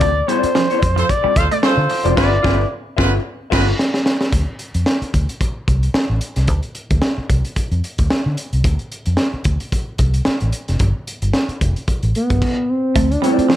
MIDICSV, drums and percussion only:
0, 0, Header, 1, 2, 480
1, 0, Start_track
1, 0, Tempo, 539084
1, 14, Time_signature, 4, 2, 24, 8
1, 12077, End_track
2, 0, Start_track
2, 0, Title_t, "Drums"
2, 6, Note_on_c, 9, 42, 78
2, 11, Note_on_c, 9, 36, 113
2, 95, Note_off_c, 9, 42, 0
2, 100, Note_off_c, 9, 36, 0
2, 256, Note_on_c, 9, 42, 56
2, 345, Note_off_c, 9, 42, 0
2, 386, Note_on_c, 9, 42, 53
2, 475, Note_off_c, 9, 42, 0
2, 490, Note_on_c, 9, 38, 95
2, 579, Note_off_c, 9, 38, 0
2, 627, Note_on_c, 9, 42, 32
2, 717, Note_off_c, 9, 42, 0
2, 733, Note_on_c, 9, 42, 67
2, 735, Note_on_c, 9, 36, 93
2, 822, Note_off_c, 9, 42, 0
2, 825, Note_off_c, 9, 36, 0
2, 868, Note_on_c, 9, 42, 46
2, 957, Note_off_c, 9, 42, 0
2, 973, Note_on_c, 9, 42, 70
2, 974, Note_on_c, 9, 36, 76
2, 1062, Note_off_c, 9, 42, 0
2, 1063, Note_off_c, 9, 36, 0
2, 1211, Note_on_c, 9, 42, 66
2, 1213, Note_on_c, 9, 36, 102
2, 1300, Note_off_c, 9, 42, 0
2, 1302, Note_off_c, 9, 36, 0
2, 1348, Note_on_c, 9, 42, 47
2, 1437, Note_off_c, 9, 42, 0
2, 1452, Note_on_c, 9, 38, 127
2, 1541, Note_off_c, 9, 38, 0
2, 1687, Note_on_c, 9, 46, 70
2, 1776, Note_off_c, 9, 46, 0
2, 1829, Note_on_c, 9, 42, 50
2, 1918, Note_off_c, 9, 42, 0
2, 1935, Note_on_c, 9, 36, 99
2, 1940, Note_on_c, 9, 49, 82
2, 1942, Note_on_c, 9, 38, 98
2, 2024, Note_off_c, 9, 36, 0
2, 2029, Note_off_c, 9, 49, 0
2, 2031, Note_off_c, 9, 38, 0
2, 2176, Note_on_c, 9, 36, 110
2, 2186, Note_on_c, 9, 38, 103
2, 2265, Note_off_c, 9, 36, 0
2, 2275, Note_off_c, 9, 38, 0
2, 2655, Note_on_c, 9, 36, 105
2, 2661, Note_on_c, 9, 38, 106
2, 2744, Note_off_c, 9, 36, 0
2, 2750, Note_off_c, 9, 38, 0
2, 3136, Note_on_c, 9, 36, 105
2, 3142, Note_on_c, 9, 49, 89
2, 3144, Note_on_c, 9, 38, 104
2, 3225, Note_off_c, 9, 36, 0
2, 3231, Note_off_c, 9, 49, 0
2, 3233, Note_off_c, 9, 38, 0
2, 3378, Note_on_c, 9, 38, 92
2, 3467, Note_off_c, 9, 38, 0
2, 3508, Note_on_c, 9, 38, 82
2, 3597, Note_off_c, 9, 38, 0
2, 3614, Note_on_c, 9, 38, 108
2, 3703, Note_off_c, 9, 38, 0
2, 3746, Note_on_c, 9, 38, 88
2, 3835, Note_off_c, 9, 38, 0
2, 3850, Note_on_c, 9, 42, 74
2, 3851, Note_on_c, 9, 36, 97
2, 3939, Note_off_c, 9, 42, 0
2, 3940, Note_off_c, 9, 36, 0
2, 4087, Note_on_c, 9, 42, 51
2, 4176, Note_off_c, 9, 42, 0
2, 4224, Note_on_c, 9, 42, 44
2, 4313, Note_off_c, 9, 42, 0
2, 4329, Note_on_c, 9, 38, 93
2, 4418, Note_off_c, 9, 38, 0
2, 4470, Note_on_c, 9, 42, 35
2, 4559, Note_off_c, 9, 42, 0
2, 4575, Note_on_c, 9, 42, 62
2, 4576, Note_on_c, 9, 36, 77
2, 4664, Note_off_c, 9, 42, 0
2, 4665, Note_off_c, 9, 36, 0
2, 4711, Note_on_c, 9, 42, 41
2, 4800, Note_off_c, 9, 42, 0
2, 4814, Note_on_c, 9, 36, 83
2, 4816, Note_on_c, 9, 42, 68
2, 4903, Note_off_c, 9, 36, 0
2, 4905, Note_off_c, 9, 42, 0
2, 5056, Note_on_c, 9, 36, 86
2, 5057, Note_on_c, 9, 42, 55
2, 5145, Note_off_c, 9, 36, 0
2, 5146, Note_off_c, 9, 42, 0
2, 5190, Note_on_c, 9, 42, 43
2, 5279, Note_off_c, 9, 42, 0
2, 5291, Note_on_c, 9, 38, 111
2, 5380, Note_off_c, 9, 38, 0
2, 5528, Note_on_c, 9, 42, 61
2, 5617, Note_off_c, 9, 42, 0
2, 5663, Note_on_c, 9, 42, 43
2, 5666, Note_on_c, 9, 38, 30
2, 5752, Note_off_c, 9, 42, 0
2, 5755, Note_off_c, 9, 38, 0
2, 5765, Note_on_c, 9, 42, 74
2, 5771, Note_on_c, 9, 36, 91
2, 5854, Note_off_c, 9, 42, 0
2, 5860, Note_off_c, 9, 36, 0
2, 5899, Note_on_c, 9, 42, 31
2, 5988, Note_off_c, 9, 42, 0
2, 6008, Note_on_c, 9, 42, 54
2, 6097, Note_off_c, 9, 42, 0
2, 6148, Note_on_c, 9, 42, 47
2, 6150, Note_on_c, 9, 36, 91
2, 6237, Note_off_c, 9, 42, 0
2, 6239, Note_off_c, 9, 36, 0
2, 6247, Note_on_c, 9, 38, 96
2, 6336, Note_off_c, 9, 38, 0
2, 6496, Note_on_c, 9, 36, 86
2, 6496, Note_on_c, 9, 42, 64
2, 6585, Note_off_c, 9, 36, 0
2, 6585, Note_off_c, 9, 42, 0
2, 6630, Note_on_c, 9, 42, 41
2, 6719, Note_off_c, 9, 42, 0
2, 6733, Note_on_c, 9, 42, 71
2, 6735, Note_on_c, 9, 36, 66
2, 6822, Note_off_c, 9, 42, 0
2, 6824, Note_off_c, 9, 36, 0
2, 6869, Note_on_c, 9, 42, 30
2, 6958, Note_off_c, 9, 42, 0
2, 6980, Note_on_c, 9, 42, 53
2, 7069, Note_off_c, 9, 42, 0
2, 7108, Note_on_c, 9, 42, 47
2, 7113, Note_on_c, 9, 36, 77
2, 7197, Note_off_c, 9, 42, 0
2, 7202, Note_off_c, 9, 36, 0
2, 7216, Note_on_c, 9, 38, 114
2, 7305, Note_off_c, 9, 38, 0
2, 7455, Note_on_c, 9, 42, 65
2, 7544, Note_off_c, 9, 42, 0
2, 7592, Note_on_c, 9, 42, 44
2, 7681, Note_off_c, 9, 42, 0
2, 7694, Note_on_c, 9, 42, 72
2, 7695, Note_on_c, 9, 36, 102
2, 7783, Note_off_c, 9, 42, 0
2, 7784, Note_off_c, 9, 36, 0
2, 7827, Note_on_c, 9, 42, 29
2, 7916, Note_off_c, 9, 42, 0
2, 7939, Note_on_c, 9, 42, 51
2, 8028, Note_off_c, 9, 42, 0
2, 8063, Note_on_c, 9, 42, 48
2, 8152, Note_off_c, 9, 42, 0
2, 8164, Note_on_c, 9, 38, 88
2, 8253, Note_off_c, 9, 38, 0
2, 8408, Note_on_c, 9, 42, 61
2, 8417, Note_on_c, 9, 36, 82
2, 8497, Note_off_c, 9, 42, 0
2, 8506, Note_off_c, 9, 36, 0
2, 8549, Note_on_c, 9, 42, 41
2, 8638, Note_off_c, 9, 42, 0
2, 8657, Note_on_c, 9, 36, 76
2, 8657, Note_on_c, 9, 42, 74
2, 8746, Note_off_c, 9, 36, 0
2, 8746, Note_off_c, 9, 42, 0
2, 8889, Note_on_c, 9, 42, 61
2, 8896, Note_on_c, 9, 36, 92
2, 8979, Note_off_c, 9, 42, 0
2, 8985, Note_off_c, 9, 36, 0
2, 9025, Note_on_c, 9, 42, 45
2, 9114, Note_off_c, 9, 42, 0
2, 9127, Note_on_c, 9, 38, 107
2, 9216, Note_off_c, 9, 38, 0
2, 9263, Note_on_c, 9, 42, 35
2, 9352, Note_off_c, 9, 42, 0
2, 9371, Note_on_c, 9, 42, 58
2, 9460, Note_off_c, 9, 42, 0
2, 9511, Note_on_c, 9, 42, 43
2, 9514, Note_on_c, 9, 38, 29
2, 9600, Note_off_c, 9, 42, 0
2, 9603, Note_off_c, 9, 38, 0
2, 9611, Note_on_c, 9, 42, 78
2, 9616, Note_on_c, 9, 36, 103
2, 9700, Note_off_c, 9, 42, 0
2, 9705, Note_off_c, 9, 36, 0
2, 9860, Note_on_c, 9, 42, 58
2, 9949, Note_off_c, 9, 42, 0
2, 9990, Note_on_c, 9, 42, 45
2, 10079, Note_off_c, 9, 42, 0
2, 10092, Note_on_c, 9, 38, 100
2, 10182, Note_off_c, 9, 38, 0
2, 10231, Note_on_c, 9, 42, 33
2, 10320, Note_off_c, 9, 42, 0
2, 10339, Note_on_c, 9, 42, 67
2, 10340, Note_on_c, 9, 36, 76
2, 10428, Note_off_c, 9, 42, 0
2, 10429, Note_off_c, 9, 36, 0
2, 10473, Note_on_c, 9, 42, 39
2, 10563, Note_off_c, 9, 42, 0
2, 10575, Note_on_c, 9, 42, 63
2, 10577, Note_on_c, 9, 36, 81
2, 10664, Note_off_c, 9, 42, 0
2, 10666, Note_off_c, 9, 36, 0
2, 10707, Note_on_c, 9, 42, 33
2, 10796, Note_off_c, 9, 42, 0
2, 10818, Note_on_c, 9, 42, 56
2, 10907, Note_off_c, 9, 42, 0
2, 10952, Note_on_c, 9, 42, 42
2, 10955, Note_on_c, 9, 36, 90
2, 11041, Note_off_c, 9, 42, 0
2, 11044, Note_off_c, 9, 36, 0
2, 11057, Note_on_c, 9, 36, 102
2, 11057, Note_on_c, 9, 49, 88
2, 11146, Note_off_c, 9, 36, 0
2, 11146, Note_off_c, 9, 49, 0
2, 11535, Note_on_c, 9, 42, 85
2, 11536, Note_on_c, 9, 36, 119
2, 11624, Note_off_c, 9, 42, 0
2, 11625, Note_off_c, 9, 36, 0
2, 11677, Note_on_c, 9, 42, 37
2, 11766, Note_off_c, 9, 42, 0
2, 11786, Note_on_c, 9, 42, 61
2, 11875, Note_off_c, 9, 42, 0
2, 11920, Note_on_c, 9, 42, 49
2, 12009, Note_off_c, 9, 42, 0
2, 12018, Note_on_c, 9, 38, 100
2, 12077, Note_off_c, 9, 38, 0
2, 12077, End_track
0, 0, End_of_file